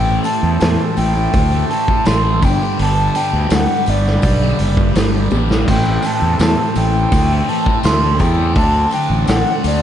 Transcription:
Already playing: A1 A2 E3 A3 E4 G4 A4 C5 G5
0.06 tambourine
0.24 A2 E3 A3 A5, open hi-hat, tambourine
0.43 E2
0.60 E2 A2 E3 A3 A5, snare, open hi-hat, tambourine
0.79 tambourine
0.96 A1 A2 E3 A3 G5, open hi-hat, tambourine
1.15 muted distorted electric guitar stroke, tambourine
1.33 D2, kick, open hi-hat, tambourine
1.51 E3 A3, tambourine
1.69 A2 E3 A3 A5, open hi-hat
1.88 muted distorted electric guitar stroke, kick, tambourine
2.05 A1 A2 E3 A3 C6, snare, open hi-hat, tambourine
2.42 G1 G2 D3 G3 D4 G4 B4 G5, kick, open hi-hat, tambourine
2.61 D3 G3
2.77 G1 G2 D3 G3 A5, open hi-hat, tambourine
2.97 tambourine
3.14 G2 D3 G3 G5, open hi-hat, tambourine
3.33 D2, tambourine
3.50 D2 G2 D3 G3 F#5, snare, open hi-hat, tambourine
3.69 tambourine
3.86 G1 G2 D3 G3 D5, open hi-hat, tambourine
4.05 muted distorted electric guitar stroke, snare, tambourine
4.22 B1, kick, open hi-hat, tambourine
4.40 D3 G3, tambourine
4.59 F#1 G2 D3 G3, open hi-hat, tambourine
4.77 muted distorted electric guitar stroke, kick, tambourine
4.95 G1 G2 D3 G3, snare, open hi-hat, tambourine
5.31 A1 G2 D3 G3, high tom, tambourine
5.48 D3 G3, snare, tambourine
5.67 A1 A2 E3 A3 C4 E4 A4 G5, kick, open hi-hat, crash
5.85 tambourine
6.02 A2 E3 A3, open hi-hat, tambourine
6.06 A5
6.22 E2
6.39 E2 A2 E3 A3 A5, snare, open hi-hat, tambourine
6.58 tambourine
6.75 A1 A2 E3 A3 G5, open hi-hat, tambourine
6.94 muted distorted electric guitar stroke, tambourine
7.12 D2, kick, open hi-hat, tambourine
7.29 E3 A3
7.47 A2 E3 A3 A5, open hi-hat
7.66 muted distorted electric guitar stroke, kick, tambourine
7.83 D2 A2 E3 A3 C6, snare, open hi-hat, tambourine
8.19 E2 A2 E3 A3 G5, kick, open hi-hat, tambourine
8.37 E3 A3
8.55 D2 D3 F#3 A3 C4 D4 A5, kick, open hi-hat
8.73 tambourine
8.91 D3 A3 D4 G5, open hi-hat, tambourine
9.10 A1
9.27 A1 D3 A3 D4 F#5, snare, open hi-hat, tambourine
9.47 tambourine
9.63 D2 D3 A3 D4 D5, open hi-hat, tambourine

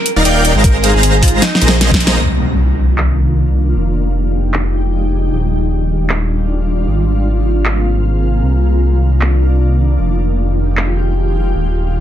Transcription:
0.06 closed hi-hat
0.16 D#1 D#4 A#4 D5 F5 A#5 A#6
0.25 D#1 D#4 A#4 D5 F5 G5 G6, closed hi-hat
0.45 closed hi-hat
0.55 G#1 G#3 G#4 C5 F5 A#5 A#6
0.64 A#4, kick, closed hi-hat
0.84 closed hi-hat
0.94 G#1 G#4 C5 F5 A#5 A#6
1.03 closed hi-hat
1.23 F4, kick, open hi-hat
1.28 closed hi-hat
1.42 D#4, snare, closed hi-hat
1.55 snare
1.62 A#1 A#3 G#4 C5 D#5 A#5 A#6, closed hi-hat
1.68 snare
1.81 snare, closed hi-hat
1.91 kick, snare
2.00 closed hi-hat
2.07 snare
2.20 C2 D#3 A#3 D4 F4, crash, impact
2.98 clap
3.76 F1 F3 G#3 D#4 G4
4.54 clap
5.32 D#1 D#3 G3 D4 F4
6.10 clap
6.87 G#1 C3 G#3 A#3
7.65 clap
8.43 C2 D#3 D4
9.21 clap
9.99 F1 G#3 F4 G4
10.77 clap
11.55 D#1 G3 D4

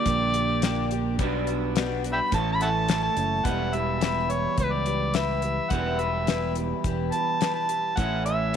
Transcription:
Already playing: A#2 D3 G3 D4 F4 A#4 D5 G5 D6
0.06 A#1 F3 A#3 D4 G4, kick, closed hi-hat
0.34 F3 A#3 D4 G4, closed hi-hat
0.62 A#2 D3 F3 A#3 D4 G4, snare, closed hi-hat
0.91 F3 A#3 D4 G4, closed hi-hat
1.19 B1 B2 G3 B3 D4 F#4 F#5 B5, kick, closed hi-hat
1.47 B3 D4 F#4, closed hi-hat
1.76 B2 G3 B3 D4 F#4, snare, closed hi-hat
2.04 B3 D4 F#4, closed hi-hat
2.13 E5 G5 B5
2.31 A1 A2 E3 A3 C#4 E4 A4 E5 A5 C#6, kick, closed hi-hat
2.52 B5
2.60 A3 C#4 E4 A4 E5 F#5 A5, closed hi-hat
2.88 E3 A3 C#4 E4 A4, snare, closed hi-hat
3.03 A5
3.16 F#1 A3 C#4 E4 A4, closed hi-hat
3.44 E1 E2 B2 E3 G3 B3 E4 G4 B4 F#5, kick, closed hi-hat
3.73 E4 G4 B4 E5, closed hi-hat
4.01 E3 E4 G4 B4, snare, closed hi-hat
4.29 B4 C#5, closed hi-hat
4.57 C#2 E3 E4 G4 B4, kick, closed hi-hat
4.72 D5
4.86 E4 G4 B4, closed hi-hat
5.14 E3 E4 G4 B4 E5, snare, closed hi-hat
5.42 E4 G4 B4, closed hi-hat
5.70 E1 E2 B2 E3 G3 B3 E4 G4 B4 F#5, kick, closed hi-hat
5.98 E4 G4 B4 E5, closed hi-hat
6.27 E3 E4 G4 B4, snare, closed hi-hat
6.55 E4 G4 B4, closed hi-hat
6.84 E1 E3 E4 G4 B4, kick, closed hi-hat
7.12 E4 G4 B4 A5, closed hi-hat
7.41 E3 E4 G4 B4, snare, closed hi-hat
7.55 A5
7.69 E4 G4 B4, closed hi-hat
7.97 A1 A2 E3 A3 C#4 E4 C#5 F#5, kick, closed hi-hat
8.25 C#4 E4 C#5 E5, closed hi-hat

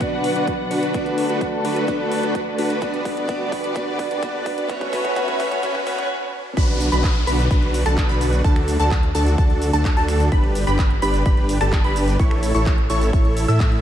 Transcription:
Already playing: B2 F#3 D4 B4 F#5, riser
0.00 B3 D4 F#4 B4 D5, kick, closed hi-hat
0.24 open hi-hat
0.36 D4 F#4 B4, closed hi-hat
0.47 kick, closed hi-hat
0.71 D4 F#4 B4, open hi-hat
0.83 closed hi-hat
0.93 D2 D3 A3 B3 D4 F#4 A4 B4 D5, kick, closed hi-hat
1.06 closed hi-hat
1.18 open hi-hat
1.29 D4 F#4 B4, closed hi-hat
1.41 kick, closed hi-hat
1.65 D4 F#4 B4, open hi-hat
1.76 closed hi-hat
1.87 B3 D4 F#4 B4 D5, kick, closed hi-hat
2.12 open hi-hat
2.23 D4 F#4 B4, closed hi-hat
2.35 kick, closed hi-hat
2.58 D4 F#4 B4, open hi-hat
2.70 closed hi-hat
2.81 G2 G3 B3 D4 F#4 B4 D5, kick, closed hi-hat
2.94 closed hi-hat
3.05 kick, open hi-hat
3.17 D4 F#4 B4, closed hi-hat
3.28 B3 D4 F#4 B4 D5, kick, closed hi-hat
3.52 kick, open hi-hat
3.64 D4 F#4 B4, closed hi-hat
3.75 B3 D4 F#4 B4 D5, kick, closed hi-hat
3.99 kick, open hi-hat
4.11 D4 F#4 B4, closed hi-hat
4.21 B3 D4 F#4 B4 D5, kick, closed hi-hat
4.46 kick, open hi-hat
4.58 D4 F#4 B4, closed hi-hat
4.68 A2 E3 B3 C#4 F#4 A4 B4 C#5 E5, kick, closed hi-hat
4.81 kick, closed hi-hat
4.92 B3 C#4 F#4 B4 C#5, kick, open hi-hat
5.05 kick, closed hi-hat
5.15 B3 C#4 F#4 B4 C#5, kick, closed hi-hat
5.28 kick, closed hi-hat
5.39 B3 C#4 F#4 B4 C#5, kick, open hi-hat
5.51 kick, closed hi-hat
5.62 B3 C#4 F#4 B4 C#5, kick, closed hi-hat
5.75 kick
5.86 B3 C#4 F#4 B4 C#5, kick, open hi-hat
5.98 kick, closed hi-hat
6.57 B1 D4 F#4 B4 B5, kick, closed hi-hat, crash, downlifter, shaker
6.69 closed hi-hat
6.80 open hi-hat, shaker
6.92 B1 D4 F#4 B4 B5, closed hi-hat, shaker
7.04 kick, clap, closed hi-hat, shaker
7.16 closed hi-hat
7.27 B1 D4 F#4 B4 B5, open hi-hat, shaker
7.39 closed hi-hat, shaker
7.51 B1 D4 F#4 B4 B5, kick, closed hi-hat, shaker
7.63 closed hi-hat
7.74 open hi-hat, shaker
7.86 B1 D4 F#4 A4 A5, finger snap, shaker
7.98 kick, clap, closed hi-hat, shaker
8.09 B1 D4 F#4 B4 B5, closed hi-hat
8.21 open hi-hat, shaker
8.33 closed hi-hat, shaker
8.44 D2 D4 F#4 A4 A5, kick, closed hi-hat, shaker
8.56 finger snap, closed hi-hat
8.68 open hi-hat, shaker
8.80 D2 D4 F#4 A4 A5, closed hi-hat, shaker
8.91 kick, clap, closed hi-hat, shaker
9.03 closed hi-hat
9.15 D2 D4 F#4 A4 A5, open hi-hat, shaker
9.27 closed hi-hat, shaker
9.38 D2 D4 F#4 A4 A5, kick, closed hi-hat, shaker
9.50 closed hi-hat
9.62 open hi-hat, shaker
9.73 D2 D4 F#4 A4 A5, closed hi-hat, shaker
9.85 kick, clap, closed hi-hat, shaker
9.97 D2 D4 F#4 A4 A5, closed hi-hat
10.08 finger snap, open hi-hat, shaker
10.20 closed hi-hat, shaker
10.32 G1 D4 G4 B4 B5, kick, closed hi-hat, shaker
10.44 closed hi-hat
10.55 open hi-hat, shaker
10.67 G1 D4 G4 B4 B5, closed hi-hat, shaker
10.79 kick, clap, closed hi-hat, shaker
10.90 closed hi-hat
11.02 G1 D4 G4 B4 B5, open hi-hat, shaker
11.14 closed hi-hat, shaker
11.26 G1 D4 G4 B4 B5, kick, closed hi-hat, shaker
11.37 closed hi-hat
11.49 open hi-hat, shaker
11.61 G1 D4 G4 A4 A5, finger snap, shaker
11.73 kick, clap, closed hi-hat, shaker
11.84 G1 D4 G4 B4 B5, closed hi-hat
11.96 open hi-hat, shaker
12.08 closed hi-hat, shaker
12.19 A1 E4 A4 C#5 C#6, kick, closed hi-hat, shaker
12.31 finger snap, closed hi-hat
12.43 open hi-hat, shaker
12.55 A1 E4 A4 C#5 C#6, closed hi-hat, shaker
12.66 kick, clap, closed hi-hat, shaker
12.78 closed hi-hat
12.90 A1 E4 A4 C#5 C#6, open hi-hat, shaker
13.02 closed hi-hat, shaker
13.13 A1 E4 A4 C#5 C#6, kick, closed hi-hat, shaker
13.25 closed hi-hat
13.37 open hi-hat, shaker
13.48 A2 E4 A4 E5 E6, closed hi-hat, shaker
13.60 kick, clap, closed hi-hat, shaker
13.72 closed hi-hat

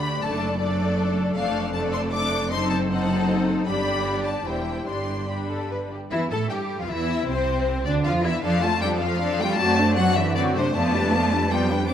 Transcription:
Already playing: D2 D3 A3 D4 G4 D5 B5
0.23 F#1 F#2 A3 D4 A4 D5 A5
0.60 A3 D4 A4 D5
1.36 F1 F2 A3 D4 A4 D5 F5
1.74 A3 D4 A4 D5 A5
1.93 C6
2.12 A3 D4 A4 D5 D6
2.51 F#1 F#2 C4 D#4 A4 C5 C6
2.70 A5
2.90 C4 D#4 A4 C5 F#5
3.67 G1 G2 G3 D4 G4 D5 B5
4.26 A5
4.46 E1 E2 G3 E4 G4 C5 G5
4.87 G1 G2 G3 D4 G4 D5 C6
5.29 G3 D4 G4 B5
5.50 A4
5.71 B4
5.92 G4
6.11 E2 E3 E4 E5
6.31 A2 A3 A4 A5
6.50 G2 G3 G4 G5
6.80 F2 F3 F4 F5
6.89 E2 E3 E4 E5
7.28 C2 C3 C4 C5
7.86 D2 D3 D4 D5
8.05 F2 F3 F4 F5
8.25 E2 E3 E4 E5
8.44 F2 F3 D4 A4 D5 F5
8.63 A3 F4 F5 A5
8.82 F3 G3 D4 A4 D5 G5
9.01 F3 A3 F4 F5
9.21 F3 D4 A4 D5
9.41 G3 A3 F4 F5 G5
9.58 F#2 F#3 A3 C4 F#4 D5 A5
9.78 A3 D4 C5
9.97 F#3 C4 F#4 D5 F#5
10.15 E3 A3 D4 C5 E5
10.35 D3 F#3 C4 F#4 D5
10.56 C3 A3 D4 C5
10.76 F2 F3 A3 B3 F4 D5 A5
10.95 G3 D4 B4
11.14 F3 B3 F4 D5
11.32 G3 D4 B4
11.52 F3 G3 B3 F4 D5 G5
11.70 G3 D4 B4
11.88 E2 E3 C4 D4 G4 C5 D6

